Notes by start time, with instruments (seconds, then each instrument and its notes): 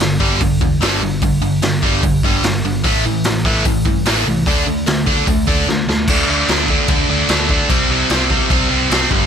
0.00 picked electric bass G1, overdriven electric guitar G2 D3, snare, open hi-hat
0.20 picked electric bass G1, overdriven electric guitar G2 D3 G3, kick
0.41 picked electric bass G1, overdriven electric guitar G2 D3, kick, open hi-hat
0.61 picked electric bass E2, overdriven electric guitar G2 D3, kick
0.81 picked electric bass G1, overdriven electric guitar G2 D3 G3, snare, open hi-hat
1.01 picked electric bass G1, overdriven electric guitar G2 D3
1.21 picked electric bass G1, overdriven electric guitar G2 D3, kick, open hi-hat
1.42 picked electric bass G1, overdriven electric guitar G2 D3
1.62 picked electric bass G1, overdriven electric guitar G2 D3, snare, open hi-hat
1.82 picked electric bass G1, overdriven electric guitar G2 D3 G3, kick
2.03 picked electric bass G1, overdriven electric guitar G2 D3, kick, open hi-hat
2.23 picked electric bass G1, overdriven electric guitar G2 D3 G3, kick
2.43 picked electric bass G1, overdriven electric guitar G2 D3, snare, open hi-hat
2.64 picked electric bass G1, overdriven electric guitar G2 D3
2.84 picked electric bass A1, overdriven electric guitar A2 E3 A3, kick, open hi-hat
3.05 picked electric bass A1, overdriven electric guitar A2 E3
3.24 picked electric bass A1, overdriven electric guitar A2 E3, snare, open hi-hat
3.45 picked electric bass A1, overdriven electric guitar A2 E3 A3, kick
3.65 picked electric bass A1, overdriven electric guitar A2 E3, kick, open hi-hat
3.85 picked electric bass G2, overdriven electric guitar A2 E3, kick
4.05 picked electric bass A1, overdriven electric guitar A2 E3 A3, snare, open hi-hat
4.26 picked electric bass C2, overdriven electric guitar A2 E3
4.46 picked electric bass D2, overdriven electric guitar D3 A3 D4, kick, open hi-hat
4.66 picked electric bass D2, overdriven electric guitar D3 A3
4.86 picked electric bass D2, overdriven electric guitar D3 A3, snare, open hi-hat
5.06 picked electric bass D2, overdriven electric guitar D3 A3 D4, kick
5.27 picked electric bass D2, overdriven electric guitar D3 A3, kick, open hi-hat
5.47 picked electric bass D2, overdriven electric guitar D3 A3 D4, kick
5.68 picked electric bass D2, overdriven electric guitar D3 A3, snare
5.87 picked electric bass D2, overdriven electric guitar D3 A3, snare
6.08 picked electric bass D2, overdriven electric guitar D3 A3 D4, kick, crash
6.28 picked electric bass D2, overdriven electric guitar D3 A3 D4
6.48 picked electric bass D2, overdriven electric guitar D3 A3 D4, snare, crash
6.68 overdriven electric guitar D3 A3 D4, kick
6.88 picked electric bass D2, overdriven electric guitar D3 A3 D4, kick, crash
7.09 picked electric bass D2, overdriven electric guitar D3 A3 D4
7.29 picked electric bass D2, overdriven electric guitar D3 A3 D4, snare, crash
7.49 overdriven electric guitar D3 A3 D4, kick
7.70 picked electric bass C2, overdriven electric guitar C3 G3 C4, kick, crash
7.89 picked electric bass C2, overdriven electric guitar C3 G3 C4
8.10 picked electric bass C2, overdriven electric guitar C3 G3 C4, snare, crash
8.30 overdriven electric guitar C3 G3 C4, kick
8.50 picked electric bass C2, overdriven electric guitar C3 G3 C4, kick, crash
8.70 picked electric bass C2, overdriven electric guitar C3 G3 C4
8.90 picked electric bass C2, overdriven electric guitar C3 G3 C4, snare, crash
9.11 picked electric bass G1, overdriven electric guitar G2 D3 G3, kick